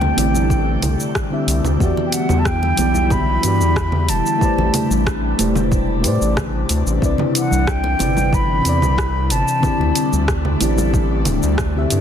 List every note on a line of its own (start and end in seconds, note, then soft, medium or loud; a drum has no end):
0.00 0.12 D2 loud
0.00 1.77 C3 medium
0.00 0.12 D3 loud
0.00 1.78 G3 medium
0.00 1.79 A3 medium
0.00 0.13 C4 medium
0.00 1.77 D4 medium
0.00 0.13 E4 medium
0.00 0.14 G4 medium
0.00 0.15 D5 loud
0.00 1.16 G5 loud
0.00 muted conga medium
0.00 low conga medium
0.15 0.78 A1 medium
0.15 0.79 D3 medium
0.15 0.79 C4 medium
0.15 0.80 E4 medium
0.15 0.80 G4 medium
0.15 0.80 D5 medium
0.15 open hi-hat loud
0.15 muted conga medium
0.15 shaker medium
0.34 high conga medium
0.34 shaker soft
0.50 kick loud
0.50 shaker soft
0.82 0.96 C2 medium
0.82 open hi-hat loud
0.82 muted conga medium
0.82 low conga medium
0.82 shaker medium
1.00 shaker soft
1.15 kick medium
1.15 cross-stick loud
1.15 shaker soft
1.30 1.76 D3 medium
1.30 1.76 C4 medium
1.30 1.77 E4 medium
1.30 1.77 G4 medium
1.30 1.78 E5 loud
1.47 1.61 C2 medium
1.47 open hi-hat medium
1.47 shaker medium
1.64 1.77 D2 medium
1.64 low conga medium
1.64 shaker soft
1.78 1.94 E2 medium
1.78 4.38 D3 medium
1.78 2.73 E3 loud
1.78 6.98 G3 medium
1.78 2.74 B3 medium
1.78 4.38 E4 medium
1.78 2.75 F#4 medium
1.78 kick loud
1.78 shaker soft
1.84 2.76 G4 medium
1.84 2.77 D5 loud
1.97 low conga medium
2.06 2.14 G5 medium
2.12 2.40 F#5 medium
2.12 open hi-hat loud
2.12 shaker medium
2.29 2.73 E2 medium
2.29 high conga medium
2.29 low conga medium
2.29 shaker soft
2.39 2.47 A5 medium
2.45 3.13 G5 loud
2.45 kick loud
2.45 cross-stick loud
2.45 shaker soft
2.63 muted conga medium
2.77 3.38 B1 medium
2.77 3.40 E3 medium
2.77 3.40 B3 medium
2.77 3.41 E4 medium
2.77 3.41 G4 medium
2.77 3.42 D5 loud
2.77 open hi-hat loud
2.77 muted conga medium
2.77 shaker medium
2.94 high conga medium
2.94 shaker soft
3.10 4.11 B5 loud
3.10 kick loud
3.10 low conga medium
3.10 shaker soft
3.41 3.62 G2 medium
3.41 4.36 E3 medium
3.41 4.37 B3 medium
3.41 4.38 F#4 medium
3.41 open hi-hat loud
3.41 shaker medium
3.46 4.39 G4 medium
3.46 4.40 D5 loud
3.61 4.10 E2 loud
3.61 shaker soft
3.76 kick loud
3.76 cross-stick loud
3.76 shaker soft
3.92 low conga medium
4.09 4.22 E1 medium
4.09 5.07 A5 medium
4.09 open hi-hat medium
4.09 shaker medium
4.26 shaker soft
4.38 12.01 C3 medium
4.38 5.34 A3 loud
4.38 9.59 D4 medium
4.38 5.35 E4 medium
4.38 5.35 G4 medium
4.38 5.36 B4 medium
4.38 kick loud
4.38 shaker soft
4.44 5.37 C5 medium
4.44 5.37 D5 loud
4.58 4.71 A1 loud
4.58 low conga medium
4.74 open hi-hat medium
4.74 low conga medium
4.74 shaker medium
4.91 5.34 A1 loud
4.91 high conga medium
4.91 shaker soft
5.07 kick loud
5.07 cross-stick loud
5.07 shaker soft
5.38 6.06 E1 medium
5.38 5.99 A3 medium
5.38 6.01 E4 medium
5.38 6.02 G4 medium
5.38 6.02 B4 medium
5.38 6.02 C5 medium
5.38 6.03 D5 medium
5.38 open hi-hat medium
5.38 muted conga medium
5.38 shaker medium
5.56 high conga loud
5.56 low conga medium
5.56 shaker soft
5.72 kick loud
5.72 shaker soft
6.01 6.18 A2 medium
6.01 6.97 A3 medium
6.01 6.97 E4 medium
6.01 6.98 G4 medium
6.01 open hi-hat medium
6.01 muted conga medium
6.05 6.99 B4 medium
6.05 7.00 C5 medium
6.05 7.00 D5 loud
6.05 shaker medium
6.21 6.65 A1 medium
6.21 shaker soft
6.37 kick loud
6.37 cross-stick loud
6.37 low conga medium
6.37 shaker soft
6.69 6.83 D2 medium
6.69 open hi-hat medium
6.69 shaker medium
6.86 6.99 A1 loud
6.86 shaker soft
6.99 7.16 C2 medium
6.99 7.94 C3 loud
6.99 7.95 C4 medium
6.99 7.96 E4 medium
6.99 kick loud
7.03 9.61 E3 medium
7.03 7.97 B4 medium
7.03 7.98 D5 loud
7.03 shaker soft
7.18 low conga medium
7.35 7.71 F#5 medium
7.35 open hi-hat medium
7.35 shaker medium
7.51 7.95 C2 loud
7.51 high conga medium
7.51 shaker soft
7.67 8.35 G5 loud
7.67 kick loud
7.67 cross-stick loud
7.67 shaker soft
7.84 muted conga medium
7.99 8.60 G1 medium
7.99 8.61 C3 medium
7.99 8.62 C4 medium
7.99 8.62 E4 medium
7.99 8.63 B4 medium
7.99 8.63 D5 loud
7.99 open hi-hat medium
7.99 muted conga medium
7.99 low conga medium
7.99 shaker medium
8.17 high conga loud
8.17 shaker soft
8.33 9.33 B5 loud
8.33 kick loud
8.33 shaker soft
8.62 8.84 E2 medium
8.62 9.58 C3 loud
8.62 9.59 C4 medium
8.62 9.59 E4 medium
8.62 open hi-hat medium
8.66 9.60 B4 medium
8.66 9.61 D5 loud
8.66 shaker medium
8.82 9.32 C2 loud
8.82 low conga medium
8.82 shaker soft
8.98 kick loud
8.98 cross-stick loud
8.98 shaker soft
9.30 9.44 G1 medium
9.30 10.29 A5 medium
9.30 open hi-hat medium
9.30 shaker medium
9.48 shaker soft
9.61 10.56 D3 loud
9.61 12.01 G3 medium
9.61 12.01 A3 medium
9.61 10.57 C4 medium
9.61 12.01 D4 medium
9.61 10.57 E4 medium
9.61 kick loud
9.61 low conga medium
9.61 shaker soft
9.65 10.58 G4 medium
9.65 10.59 D5 loud
9.80 9.93 D2 loud
9.80 low conga medium
9.95 open hi-hat medium
9.95 shaker medium
10.13 10.56 D2 loud
10.13 high conga medium
10.13 shaker soft
10.28 kick loud
10.28 cross-stick loud
10.28 shaker soft
10.45 low conga medium
10.60 11.28 A1 medium
10.60 11.23 D3 medium
10.60 11.23 C4 medium
10.60 11.23 E4 medium
10.60 11.24 G4 medium
10.60 11.24 D5 loud
10.60 open hi-hat medium
10.60 muted conga medium
10.60 shaker medium
10.78 high conga loud
10.78 shaker soft
10.94 kick loud
10.94 shaker soft
11.25 11.40 D1 medium
11.25 open hi-hat medium
11.25 muted conga medium
11.25 low conga medium
11.25 shaker medium
11.43 11.87 D2 medium
11.43 shaker soft
11.58 kick loud
11.58 cross-stick loud
11.58 shaker soft
11.75 12.01 D3 medium
11.75 12.01 C4 medium
11.75 12.01 E4 medium
11.75 12.01 G4 medium
11.75 12.01 E5 loud
11.90 12.01 G2 medium
11.90 open hi-hat medium
11.90 shaker medium